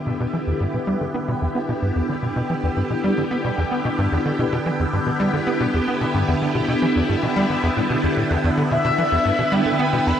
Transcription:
0.00 10.20 D3 medium
0.00 10.20 B3 medium
0.00 10.20 E4 medium
0.00 8.43 G4 medium
0.00 10.20 B4 medium
0.07 0.13 B2 medium
0.20 0.26 B2 loud
0.33 0.37 E3 medium
0.47 0.53 E2 medium
0.60 0.67 G2 medium
0.74 0.78 B2 medium
0.87 0.97 G3 loud
1.01 1.07 D3 medium
1.14 1.21 B3 loud
1.28 1.34 B2 loud
1.42 1.48 E2 medium
1.55 1.64 B3 medium
1.69 1.72 B2 loud
1.82 1.91 G2 medium
1.96 2.02 E2 medium
2.09 2.15 D3 medium
2.22 2.29 B2 medium
2.36 2.42 B2 loud
2.50 2.53 E3 medium
2.63 2.69 E2 medium
2.76 2.83 G2 medium
2.90 2.94 B2 medium
3.04 3.13 G3 loud
3.18 3.24 D3 medium
3.31 3.37 B3 medium
3.44 3.51 B2 medium
3.58 3.64 E2 medium
3.71 3.81 B3 medium
3.85 3.89 B2 loud
3.98 4.08 G2 loud
4.12 4.18 E2 loud
4.25 4.32 D3 medium
4.39 4.45 B2 medium
4.53 4.59 B2 loud
4.66 4.70 E3 medium
4.79 4.86 E2 medium
4.93 4.99 G2 medium
5.06 5.10 B2 medium
5.20 5.29 G3 loud
5.33 5.40 D3 medium
5.47 5.53 B3 medium
5.60 5.67 B2 medium
5.74 5.80 E2 medium
5.88 5.97 B3 medium
6.01 6.05 B2 loud
6.14 6.24 G2 loud
6.28 6.34 E2 loud
6.42 6.48 D3 medium
6.55 6.61 B2 medium
6.68 6.75 B2 loud
6.82 6.86 E3 medium
6.96 7.02 E2 medium
7.09 7.15 G2 medium
7.23 7.27 B2 medium
7.36 7.46 G3 loud
7.50 7.56 D3 medium
7.63 7.69 E2 medium
7.77 7.81 A2 medium
7.90 7.96 B2 medium
8.03 8.07 E2 medium
8.17 8.23 A2 medium
8.30 8.37 E2 medium
8.44 8.50 E2 loud
8.44 10.20 B4 medium
8.57 8.64 D3 medium
8.71 8.77 B2 medium
8.71 9.54 E5 loud
8.85 8.91 B2 loud
8.98 9.02 E3 medium
9.12 9.18 E2 medium
9.25 9.32 G2 medium
9.39 9.43 B2 medium
9.52 9.61 G3 loud
9.52 10.08 G5 loud
9.66 9.72 D3 medium
9.79 9.85 B3 loud
9.93 9.99 B2 loud
10.07 10.13 E2 medium
10.07 10.20 B5 loud

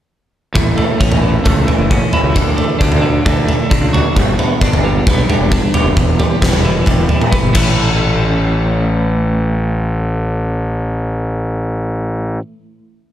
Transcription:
0.54 0.74 A1 medium
0.54 1.67 A2 medium
0.54 kick loud
0.54 floor tom medium
0.77 1.43 A3 medium
0.77 floor tom medium
1.00 1.38 A1 medium
1.00 1.89 C#4 medium
1.00 kick medium
1.12 floor tom medium
1.22 1.67 E3 medium
1.44 1.65 C#2 medium
1.44 2.34 A3 medium
1.44 kick loud
1.44 floor tom medium
1.68 2.34 E3 medium
1.68 floor tom medium
1.78 1.98 F#1 medium
1.91 2.35 C#4 medium
1.91 kick loud
2.13 2.35 E4 medium
2.13 floor tom medium
2.23 2.33 C#2 medium
2.35 2.55 D2 medium
2.35 3.01 D3 medium
2.35 kick loud
2.35 floor tom medium
2.57 3.25 A3 medium
2.57 floor tom medium
2.79 3.19 D2 medium
2.79 3.69 D4 medium
2.79 kick medium
2.92 floor tom medium
3.02 3.46 D3 medium
3.26 3.45 D2 medium
3.26 4.16 A3 medium
3.26 kick loud
3.26 floor tom medium
3.48 4.15 D3 medium
3.48 floor tom medium
3.70 4.15 D4 medium
3.70 kick loud
3.80 4.00 C#2 medium
3.93 4.16 F#4 medium
3.93 floor tom medium
4.16 4.35 G1 medium
4.16 5.29 G2 medium
4.16 kick medium
4.16 floor tom medium
4.39 5.07 B3 medium
4.39 floor tom medium
4.61 5.00 G1 medium
4.61 5.51 D4 medium
4.61 kick medium
4.74 floor tom medium
4.85 5.28 G3 medium
5.07 5.26 B1 medium
5.07 5.98 B3 medium
5.07 kick loud
5.07 floor tom medium
5.29 5.97 G3 medium
5.29 floor tom medium
5.39 5.59 E1 medium
5.52 5.97 D4 medium
5.52 kick medium
5.74 5.97 G4 medium
5.74 floor tom medium
5.84 5.94 F1 medium
5.96 6.16 E1 medium
5.96 7.10 E2 medium
5.96 kick loud
5.96 floor tom medium
6.19 6.87 G3 medium
6.19 floor tom medium
6.42 6.80 E1 medium
6.42 7.30 B3 medium
6.42 kick medium
6.42 snare medium
6.53 floor tom medium
6.65 7.08 E3 medium
6.86 7.06 E1 medium
6.86 7.55 G3 medium
6.86 kick loud
6.86 floor tom medium
7.09 7.53 E3 medium
7.09 floor tom medium
7.21 mid tom medium
7.32 7.54 B3 medium
7.32 kick medium
7.43 7.53 G1 medium
7.53 12.37 A1 medium
7.53 12.39 A2 medium
7.53 12.40 E3 medium
7.53 12.42 A3 medium
7.53 12.42 C#4 medium
7.53 12.43 E4 medium
7.53 kick loud
7.53 crash medium

